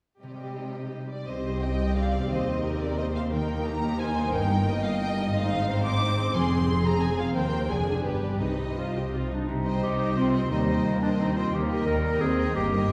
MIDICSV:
0, 0, Header, 1, 8, 480
1, 0, Start_track
1, 0, Key_signature, -3, "minor"
1, 0, Tempo, 344630
1, 320, Time_signature, 3, 2, 24, 8
1, 4160, Tempo, 336700
1, 10400, Tempo, 354191
1, 13280, Tempo, 340136
1, 18123, End_track
2, 0, Start_track
2, 0, Title_t, "Violin section"
2, 0, Program_c, 0, 48
2, 322, Note_on_c, 0, 75, 31
2, 1468, Note_off_c, 0, 75, 0
2, 1525, Note_on_c, 0, 74, 50
2, 1752, Note_off_c, 0, 74, 0
2, 1765, Note_on_c, 0, 75, 43
2, 2248, Note_on_c, 0, 79, 49
2, 2250, Note_off_c, 0, 75, 0
2, 2724, Note_on_c, 0, 77, 51
2, 2730, Note_off_c, 0, 79, 0
2, 3194, Note_off_c, 0, 77, 0
2, 3203, Note_on_c, 0, 75, 51
2, 3912, Note_on_c, 0, 74, 53
2, 3920, Note_off_c, 0, 75, 0
2, 4150, Note_on_c, 0, 75, 52
2, 4153, Note_off_c, 0, 74, 0
2, 4248, Note_off_c, 0, 75, 0
2, 4402, Note_on_c, 0, 77, 53
2, 4498, Note_off_c, 0, 77, 0
2, 4642, Note_on_c, 0, 79, 53
2, 5113, Note_off_c, 0, 79, 0
2, 5123, Note_on_c, 0, 82, 66
2, 5595, Note_on_c, 0, 80, 65
2, 5602, Note_off_c, 0, 82, 0
2, 6079, Note_on_c, 0, 79, 69
2, 6080, Note_off_c, 0, 80, 0
2, 6785, Note_off_c, 0, 79, 0
2, 6791, Note_on_c, 0, 77, 67
2, 7033, Note_on_c, 0, 79, 70
2, 7035, Note_off_c, 0, 77, 0
2, 7272, Note_off_c, 0, 79, 0
2, 7519, Note_on_c, 0, 77, 73
2, 8184, Note_off_c, 0, 77, 0
2, 8234, Note_on_c, 0, 86, 81
2, 8955, Note_off_c, 0, 86, 0
2, 8956, Note_on_c, 0, 84, 68
2, 9665, Note_on_c, 0, 82, 72
2, 9673, Note_off_c, 0, 84, 0
2, 9902, Note_on_c, 0, 80, 65
2, 9910, Note_off_c, 0, 82, 0
2, 10149, Note_off_c, 0, 80, 0
2, 10150, Note_on_c, 0, 77, 58
2, 10392, Note_on_c, 0, 79, 63
2, 10394, Note_off_c, 0, 77, 0
2, 10850, Note_off_c, 0, 79, 0
2, 10851, Note_on_c, 0, 80, 56
2, 11322, Note_on_c, 0, 71, 47
2, 11326, Note_off_c, 0, 80, 0
2, 11790, Note_off_c, 0, 71, 0
2, 11806, Note_on_c, 0, 71, 43
2, 12292, Note_off_c, 0, 71, 0
2, 12301, Note_on_c, 0, 72, 36
2, 12794, Note_off_c, 0, 72, 0
2, 13517, Note_on_c, 0, 79, 39
2, 13975, Note_off_c, 0, 79, 0
2, 13992, Note_on_c, 0, 79, 39
2, 14460, Note_off_c, 0, 79, 0
2, 14477, Note_on_c, 0, 79, 38
2, 14705, Note_off_c, 0, 79, 0
2, 14722, Note_on_c, 0, 79, 35
2, 14931, Note_off_c, 0, 79, 0
2, 14948, Note_on_c, 0, 79, 39
2, 15423, Note_off_c, 0, 79, 0
2, 15440, Note_on_c, 0, 79, 40
2, 15916, Note_off_c, 0, 79, 0
2, 15933, Note_on_c, 0, 79, 38
2, 16166, Note_off_c, 0, 79, 0
2, 16404, Note_on_c, 0, 79, 41
2, 16869, Note_off_c, 0, 79, 0
2, 16886, Note_on_c, 0, 79, 42
2, 17357, Note_off_c, 0, 79, 0
2, 17372, Note_on_c, 0, 79, 40
2, 17598, Note_off_c, 0, 79, 0
2, 17615, Note_on_c, 0, 79, 40
2, 17842, Note_off_c, 0, 79, 0
2, 17856, Note_on_c, 0, 79, 45
2, 18123, Note_off_c, 0, 79, 0
2, 18123, End_track
3, 0, Start_track
3, 0, Title_t, "Violin section"
3, 0, Program_c, 1, 48
3, 325, Note_on_c, 1, 67, 31
3, 1470, Note_off_c, 1, 67, 0
3, 1772, Note_on_c, 1, 72, 38
3, 2220, Note_off_c, 1, 72, 0
3, 2250, Note_on_c, 1, 75, 44
3, 2731, Note_off_c, 1, 75, 0
3, 2736, Note_on_c, 1, 74, 42
3, 3201, Note_on_c, 1, 72, 42
3, 3210, Note_off_c, 1, 74, 0
3, 3669, Note_on_c, 1, 70, 40
3, 3673, Note_off_c, 1, 72, 0
3, 4141, Note_off_c, 1, 70, 0
3, 4154, Note_on_c, 1, 72, 44
3, 4635, Note_on_c, 1, 70, 45
3, 4639, Note_off_c, 1, 72, 0
3, 5109, Note_off_c, 1, 70, 0
3, 5122, Note_on_c, 1, 67, 48
3, 5589, Note_on_c, 1, 72, 56
3, 5601, Note_off_c, 1, 67, 0
3, 6076, Note_on_c, 1, 70, 49
3, 6077, Note_off_c, 1, 72, 0
3, 6557, Note_on_c, 1, 75, 67
3, 6558, Note_off_c, 1, 70, 0
3, 7994, Note_off_c, 1, 75, 0
3, 7998, Note_on_c, 1, 72, 61
3, 8937, Note_off_c, 1, 72, 0
3, 8949, Note_on_c, 1, 68, 51
3, 9414, Note_off_c, 1, 68, 0
3, 9431, Note_on_c, 1, 68, 53
3, 10377, Note_off_c, 1, 68, 0
3, 10391, Note_on_c, 1, 70, 48
3, 10850, Note_off_c, 1, 70, 0
3, 10860, Note_on_c, 1, 68, 42
3, 11322, Note_on_c, 1, 67, 38
3, 11331, Note_off_c, 1, 68, 0
3, 11802, Note_on_c, 1, 75, 39
3, 11808, Note_off_c, 1, 67, 0
3, 13034, Note_off_c, 1, 75, 0
3, 13500, Note_on_c, 1, 75, 39
3, 13503, Note_on_c, 1, 72, 39
3, 13976, Note_off_c, 1, 72, 0
3, 13980, Note_off_c, 1, 75, 0
3, 13993, Note_on_c, 1, 72, 39
3, 13996, Note_on_c, 1, 75, 38
3, 14453, Note_off_c, 1, 72, 0
3, 14453, Note_off_c, 1, 75, 0
3, 14470, Note_on_c, 1, 72, 38
3, 14470, Note_on_c, 1, 75, 38
3, 14707, Note_off_c, 1, 75, 0
3, 14708, Note_off_c, 1, 72, 0
3, 14724, Note_on_c, 1, 75, 37
3, 14725, Note_on_c, 1, 72, 37
3, 14948, Note_off_c, 1, 72, 0
3, 14948, Note_off_c, 1, 75, 0
3, 14965, Note_on_c, 1, 72, 38
3, 14965, Note_on_c, 1, 75, 39
3, 15425, Note_off_c, 1, 72, 0
3, 15431, Note_off_c, 1, 75, 0
3, 15442, Note_on_c, 1, 72, 38
3, 15448, Note_on_c, 1, 75, 39
3, 15906, Note_off_c, 1, 75, 0
3, 15910, Note_off_c, 1, 72, 0
3, 15923, Note_on_c, 1, 75, 39
3, 15927, Note_on_c, 1, 72, 36
3, 16161, Note_off_c, 1, 75, 0
3, 16164, Note_off_c, 1, 72, 0
3, 16420, Note_on_c, 1, 70, 41
3, 16420, Note_on_c, 1, 75, 41
3, 16877, Note_off_c, 1, 70, 0
3, 16879, Note_off_c, 1, 75, 0
3, 16894, Note_on_c, 1, 70, 42
3, 16896, Note_on_c, 1, 75, 37
3, 17356, Note_off_c, 1, 75, 0
3, 17361, Note_off_c, 1, 70, 0
3, 17373, Note_on_c, 1, 75, 41
3, 17376, Note_on_c, 1, 70, 39
3, 17593, Note_off_c, 1, 70, 0
3, 17594, Note_off_c, 1, 75, 0
3, 17610, Note_on_c, 1, 70, 42
3, 17610, Note_on_c, 1, 75, 43
3, 17824, Note_off_c, 1, 70, 0
3, 17830, Note_off_c, 1, 75, 0
3, 17841, Note_on_c, 1, 70, 47
3, 17847, Note_on_c, 1, 75, 43
3, 18123, Note_off_c, 1, 70, 0
3, 18123, Note_off_c, 1, 75, 0
3, 18123, End_track
4, 0, Start_track
4, 0, Title_t, "Clarinet"
4, 0, Program_c, 2, 71
4, 13025, Note_on_c, 2, 62, 42
4, 13268, Note_on_c, 2, 63, 50
4, 13289, Note_off_c, 2, 62, 0
4, 13751, Note_off_c, 2, 63, 0
4, 13759, Note_on_c, 2, 67, 58
4, 14242, Note_on_c, 2, 65, 59
4, 14263, Note_off_c, 2, 67, 0
4, 14714, Note_off_c, 2, 65, 0
4, 14722, Note_on_c, 2, 63, 61
4, 15434, Note_off_c, 2, 63, 0
4, 15446, Note_on_c, 2, 62, 57
4, 15555, Note_off_c, 2, 62, 0
4, 15699, Note_on_c, 2, 63, 62
4, 15930, Note_on_c, 2, 65, 60
4, 15951, Note_off_c, 2, 63, 0
4, 16177, Note_on_c, 2, 67, 54
4, 16198, Note_off_c, 2, 65, 0
4, 16624, Note_off_c, 2, 67, 0
4, 16633, Note_on_c, 2, 70, 67
4, 17122, Note_on_c, 2, 68, 69
4, 17143, Note_off_c, 2, 70, 0
4, 17602, Note_off_c, 2, 68, 0
4, 17609, Note_on_c, 2, 67, 73
4, 18123, Note_off_c, 2, 67, 0
4, 18123, End_track
5, 0, Start_track
5, 0, Title_t, "Harp"
5, 0, Program_c, 3, 46
5, 321, Note_on_c, 3, 48, 34
5, 561, Note_on_c, 3, 60, 26
5, 797, Note_on_c, 3, 63, 33
5, 1039, Note_on_c, 3, 67, 35
5, 1281, Note_on_c, 3, 72, 40
5, 1508, Note_off_c, 3, 67, 0
5, 1525, Note_on_c, 3, 67, 33
5, 1755, Note_off_c, 3, 48, 0
5, 1771, Note_on_c, 3, 48, 40
5, 2007, Note_on_c, 3, 55, 27
5, 2239, Note_off_c, 3, 63, 0
5, 2255, Note_on_c, 3, 63, 28
5, 2478, Note_off_c, 3, 67, 0
5, 2495, Note_on_c, 3, 67, 29
5, 2722, Note_off_c, 3, 63, 0
5, 2739, Note_on_c, 3, 63, 33
5, 2959, Note_off_c, 3, 60, 0
5, 2976, Note_on_c, 3, 60, 31
5, 3212, Note_on_c, 3, 51, 42
5, 3229, Note_off_c, 3, 48, 0
5, 3437, Note_off_c, 3, 60, 0
5, 3453, Note_on_c, 3, 60, 30
5, 3666, Note_off_c, 3, 67, 0
5, 3683, Note_on_c, 3, 67, 31
5, 3905, Note_off_c, 3, 72, 0
5, 3922, Note_on_c, 3, 72, 34
5, 4145, Note_off_c, 3, 67, 0
5, 4162, Note_on_c, 3, 67, 33
5, 4385, Note_off_c, 3, 63, 0
5, 4402, Note_on_c, 3, 63, 34
5, 4624, Note_off_c, 3, 51, 0
5, 4641, Note_on_c, 3, 51, 50
5, 4661, Note_off_c, 3, 72, 0
5, 4664, Note_off_c, 3, 60, 0
5, 4886, Note_on_c, 3, 58, 33
5, 5116, Note_on_c, 3, 70, 35
5, 5338, Note_off_c, 3, 63, 0
5, 5355, Note_on_c, 3, 63, 39
5, 5581, Note_off_c, 3, 70, 0
5, 5598, Note_on_c, 3, 70, 39
5, 5820, Note_off_c, 3, 63, 0
5, 5837, Note_on_c, 3, 63, 36
5, 6081, Note_on_c, 3, 43, 55
5, 6100, Note_off_c, 3, 55, 0
5, 6102, Note_off_c, 3, 51, 0
5, 6319, Note_on_c, 3, 55, 36
5, 6540, Note_off_c, 3, 63, 0
5, 6557, Note_on_c, 3, 63, 39
5, 6782, Note_off_c, 3, 70, 0
5, 6799, Note_on_c, 3, 70, 42
5, 7014, Note_off_c, 3, 63, 0
5, 7031, Note_on_c, 3, 63, 42
5, 7261, Note_off_c, 3, 58, 0
5, 7278, Note_on_c, 3, 58, 39
5, 7511, Note_on_c, 3, 44, 59
5, 7537, Note_off_c, 3, 55, 0
5, 7537, Note_off_c, 3, 58, 0
5, 7538, Note_off_c, 3, 43, 0
5, 7538, Note_off_c, 3, 70, 0
5, 7540, Note_off_c, 3, 67, 0
5, 7758, Note_on_c, 3, 51, 41
5, 7983, Note_off_c, 3, 63, 0
5, 8000, Note_on_c, 3, 63, 42
5, 8234, Note_on_c, 3, 68, 42
5, 8460, Note_off_c, 3, 63, 0
5, 8477, Note_on_c, 3, 63, 45
5, 8714, Note_on_c, 3, 60, 41
5, 8950, Note_on_c, 3, 53, 55
5, 8970, Note_off_c, 3, 44, 0
5, 8974, Note_off_c, 3, 51, 0
5, 8976, Note_off_c, 3, 63, 0
5, 9180, Note_off_c, 3, 60, 0
5, 9197, Note_on_c, 3, 60, 39
5, 9422, Note_off_c, 3, 68, 0
5, 9439, Note_on_c, 3, 68, 39
5, 9680, Note_on_c, 3, 72, 40
5, 9900, Note_off_c, 3, 68, 0
5, 9917, Note_on_c, 3, 68, 40
5, 10154, Note_on_c, 3, 65, 37
5, 10397, Note_on_c, 3, 51, 51
5, 10413, Note_off_c, 3, 53, 0
5, 10415, Note_off_c, 3, 65, 0
5, 10417, Note_off_c, 3, 68, 0
5, 10615, Note_off_c, 3, 72, 0
5, 10622, Note_on_c, 3, 67, 32
5, 10635, Note_on_c, 3, 72, 33
5, 10859, Note_on_c, 3, 41, 42
5, 10880, Note_off_c, 3, 67, 0
5, 10881, Note_off_c, 3, 51, 0
5, 10882, Note_off_c, 3, 60, 0
5, 10882, Note_off_c, 3, 72, 0
5, 11089, Note_on_c, 3, 62, 27
5, 11098, Note_on_c, 3, 74, 33
5, 11323, Note_on_c, 3, 43, 36
5, 11349, Note_off_c, 3, 41, 0
5, 11545, Note_off_c, 3, 62, 0
5, 11551, Note_off_c, 3, 74, 0
5, 11561, Note_on_c, 3, 62, 26
5, 11567, Note_on_c, 3, 74, 26
5, 11802, Note_on_c, 3, 48, 35
5, 11828, Note_off_c, 3, 43, 0
5, 11829, Note_off_c, 3, 62, 0
5, 11832, Note_off_c, 3, 74, 0
5, 12049, Note_on_c, 3, 60, 25
5, 12299, Note_on_c, 3, 63, 24
5, 12546, Note_on_c, 3, 72, 25
5, 12776, Note_off_c, 3, 63, 0
5, 12793, Note_on_c, 3, 63, 27
5, 13037, Note_on_c, 3, 55, 24
5, 13261, Note_off_c, 3, 48, 0
5, 13277, Note_on_c, 3, 48, 49
5, 13496, Note_off_c, 3, 60, 0
5, 13513, Note_on_c, 3, 60, 32
5, 13740, Note_off_c, 3, 63, 0
5, 13757, Note_on_c, 3, 63, 34
5, 13978, Note_off_c, 3, 72, 0
5, 13995, Note_on_c, 3, 72, 35
5, 14217, Note_off_c, 3, 63, 0
5, 14234, Note_on_c, 3, 63, 37
5, 14465, Note_off_c, 3, 55, 0
5, 14482, Note_on_c, 3, 55, 34
5, 14725, Note_on_c, 3, 51, 48
5, 14741, Note_off_c, 3, 48, 0
5, 14951, Note_off_c, 3, 55, 0
5, 14967, Note_on_c, 3, 55, 32
5, 15196, Note_off_c, 3, 72, 0
5, 15213, Note_on_c, 3, 72, 34
5, 15454, Note_on_c, 3, 67, 36
5, 15678, Note_off_c, 3, 72, 0
5, 15695, Note_on_c, 3, 72, 36
5, 15921, Note_off_c, 3, 63, 0
5, 15938, Note_on_c, 3, 63, 34
5, 16158, Note_off_c, 3, 51, 0
5, 16174, Note_on_c, 3, 51, 50
5, 16186, Note_off_c, 3, 60, 0
5, 16192, Note_off_c, 3, 72, 0
5, 16410, Note_on_c, 3, 58, 35
5, 16653, Note_on_c, 3, 70, 38
5, 16876, Note_off_c, 3, 63, 0
5, 16893, Note_on_c, 3, 63, 37
5, 17111, Note_off_c, 3, 70, 0
5, 17128, Note_on_c, 3, 70, 39
5, 17354, Note_off_c, 3, 63, 0
5, 17370, Note_on_c, 3, 63, 38
5, 17608, Note_on_c, 3, 43, 52
5, 17627, Note_off_c, 3, 51, 0
5, 17827, Note_off_c, 3, 55, 0
5, 17844, Note_on_c, 3, 55, 40
5, 18065, Note_off_c, 3, 63, 0
5, 18123, Note_off_c, 3, 43, 0
5, 18123, Note_off_c, 3, 55, 0
5, 18123, Note_off_c, 3, 58, 0
5, 18123, Note_off_c, 3, 67, 0
5, 18123, Note_off_c, 3, 70, 0
5, 18123, End_track
6, 0, Start_track
6, 0, Title_t, "Viola section"
6, 0, Program_c, 4, 48
6, 322, Note_on_c, 4, 55, 29
6, 1468, Note_off_c, 4, 55, 0
6, 1771, Note_on_c, 4, 60, 40
6, 1775, Note_on_c, 4, 67, 40
6, 4586, Note_off_c, 4, 60, 0
6, 4588, Note_off_c, 4, 67, 0
6, 4632, Note_on_c, 4, 63, 47
6, 4633, Note_on_c, 4, 58, 47
6, 7458, Note_off_c, 4, 58, 0
6, 7458, Note_off_c, 4, 63, 0
6, 7522, Note_on_c, 4, 60, 57
6, 7522, Note_on_c, 4, 63, 55
6, 8899, Note_off_c, 4, 63, 0
6, 8956, Note_on_c, 4, 68, 54
6, 10340, Note_off_c, 4, 68, 0
6, 10341, Note_off_c, 4, 60, 0
6, 10397, Note_on_c, 4, 72, 43
6, 10401, Note_on_c, 4, 60, 41
6, 10829, Note_off_c, 4, 72, 0
6, 10831, Note_off_c, 4, 60, 0
6, 10861, Note_on_c, 4, 62, 38
6, 10863, Note_on_c, 4, 68, 41
6, 11299, Note_off_c, 4, 68, 0
6, 11332, Note_on_c, 4, 67, 36
6, 11758, Note_off_c, 4, 62, 0
6, 11807, Note_on_c, 4, 63, 32
6, 12202, Note_off_c, 4, 67, 0
6, 12222, Note_off_c, 4, 63, 0
6, 12299, Note_on_c, 4, 65, 43
6, 12531, Note_off_c, 4, 65, 0
6, 12547, Note_on_c, 4, 67, 35
6, 12794, Note_off_c, 4, 67, 0
6, 12794, Note_on_c, 4, 65, 37
6, 13026, Note_on_c, 4, 63, 31
6, 13038, Note_off_c, 4, 65, 0
6, 13271, Note_off_c, 4, 63, 0
6, 13752, Note_on_c, 4, 63, 52
6, 14202, Note_off_c, 4, 63, 0
6, 14233, Note_on_c, 4, 60, 47
6, 14709, Note_off_c, 4, 60, 0
6, 14721, Note_on_c, 4, 55, 49
6, 15197, Note_off_c, 4, 55, 0
6, 15207, Note_on_c, 4, 58, 53
6, 15680, Note_off_c, 4, 58, 0
6, 15687, Note_on_c, 4, 60, 45
6, 16169, Note_off_c, 4, 60, 0
6, 16177, Note_on_c, 4, 58, 54
6, 16652, Note_off_c, 4, 58, 0
6, 16652, Note_on_c, 4, 55, 50
6, 17121, Note_off_c, 4, 55, 0
6, 17132, Note_on_c, 4, 60, 58
6, 17607, Note_on_c, 4, 58, 49
6, 17608, Note_off_c, 4, 60, 0
6, 18079, Note_off_c, 4, 58, 0
6, 18123, End_track
7, 0, Start_track
7, 0, Title_t, "Cello section"
7, 0, Program_c, 5, 48
7, 320, Note_on_c, 5, 48, 31
7, 1467, Note_off_c, 5, 48, 0
7, 1765, Note_on_c, 5, 36, 37
7, 3150, Note_off_c, 5, 36, 0
7, 3200, Note_on_c, 5, 39, 42
7, 6022, Note_off_c, 5, 39, 0
7, 6080, Note_on_c, 5, 43, 52
7, 7490, Note_off_c, 5, 43, 0
7, 7511, Note_on_c, 5, 44, 56
7, 8951, Note_off_c, 5, 44, 0
7, 8954, Note_on_c, 5, 41, 52
7, 10384, Note_on_c, 5, 39, 46
7, 10396, Note_off_c, 5, 41, 0
7, 10846, Note_off_c, 5, 39, 0
7, 10853, Note_on_c, 5, 41, 43
7, 11324, Note_on_c, 5, 43, 39
7, 11327, Note_off_c, 5, 41, 0
7, 11800, Note_on_c, 5, 48, 34
7, 11809, Note_off_c, 5, 43, 0
7, 13033, Note_off_c, 5, 48, 0
7, 13266, Note_on_c, 5, 48, 49
7, 13696, Note_off_c, 5, 48, 0
7, 13746, Note_on_c, 5, 48, 48
7, 14177, Note_off_c, 5, 48, 0
7, 14235, Note_on_c, 5, 48, 48
7, 14662, Note_off_c, 5, 48, 0
7, 14713, Note_on_c, 5, 39, 50
7, 15145, Note_off_c, 5, 39, 0
7, 15198, Note_on_c, 5, 39, 46
7, 15628, Note_off_c, 5, 39, 0
7, 15686, Note_on_c, 5, 39, 49
7, 16112, Note_off_c, 5, 39, 0
7, 16167, Note_on_c, 5, 39, 51
7, 16590, Note_off_c, 5, 39, 0
7, 16644, Note_on_c, 5, 39, 52
7, 17070, Note_off_c, 5, 39, 0
7, 17137, Note_on_c, 5, 39, 50
7, 17554, Note_off_c, 5, 39, 0
7, 17610, Note_on_c, 5, 43, 54
7, 18025, Note_off_c, 5, 43, 0
7, 18075, Note_on_c, 5, 43, 57
7, 18123, Note_off_c, 5, 43, 0
7, 18123, End_track
8, 0, Start_track
8, 0, Title_t, "Double bass section"
8, 0, Program_c, 6, 48
8, 1775, Note_on_c, 6, 36, 38
8, 3155, Note_off_c, 6, 36, 0
8, 3212, Note_on_c, 6, 39, 41
8, 6028, Note_off_c, 6, 39, 0
8, 6090, Note_on_c, 6, 31, 53
8, 7494, Note_off_c, 6, 31, 0
8, 7525, Note_on_c, 6, 32, 54
8, 8958, Note_off_c, 6, 32, 0
8, 8959, Note_on_c, 6, 29, 53
8, 10398, Note_off_c, 6, 29, 0
8, 10400, Note_on_c, 6, 39, 47
8, 10854, Note_off_c, 6, 39, 0
8, 10859, Note_on_c, 6, 29, 42
8, 11325, Note_on_c, 6, 31, 37
8, 11330, Note_off_c, 6, 29, 0
8, 11810, Note_off_c, 6, 31, 0
8, 11814, Note_on_c, 6, 36, 33
8, 13040, Note_off_c, 6, 36, 0
8, 13277, Note_on_c, 6, 36, 45
8, 13702, Note_off_c, 6, 36, 0
8, 13755, Note_on_c, 6, 36, 46
8, 14181, Note_off_c, 6, 36, 0
8, 14233, Note_on_c, 6, 36, 47
8, 14661, Note_off_c, 6, 36, 0
8, 14718, Note_on_c, 6, 39, 50
8, 15148, Note_off_c, 6, 39, 0
8, 15202, Note_on_c, 6, 39, 45
8, 15630, Note_off_c, 6, 39, 0
8, 15693, Note_on_c, 6, 39, 48
8, 16115, Note_off_c, 6, 39, 0
8, 16169, Note_on_c, 6, 39, 50
8, 16591, Note_off_c, 6, 39, 0
8, 16644, Note_on_c, 6, 39, 49
8, 17070, Note_off_c, 6, 39, 0
8, 17127, Note_on_c, 6, 39, 50
8, 17549, Note_off_c, 6, 39, 0
8, 17609, Note_on_c, 6, 31, 56
8, 18024, Note_off_c, 6, 31, 0
8, 18123, End_track
0, 0, End_of_file